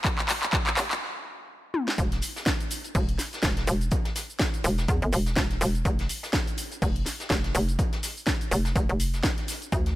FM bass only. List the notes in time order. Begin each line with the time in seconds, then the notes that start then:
0.77 F1
1.98 E1
2.95 E1
3.43 E1
3.67 E1
4.64 E1
4.88 E2
5.02 G1
5.13 E1
5.37 E1
5.61 E1
5.85 F1
6.82 F1
7.30 F1
7.55 F1
8.51 F1
8.76 F1
8.89 F1
9.72 D2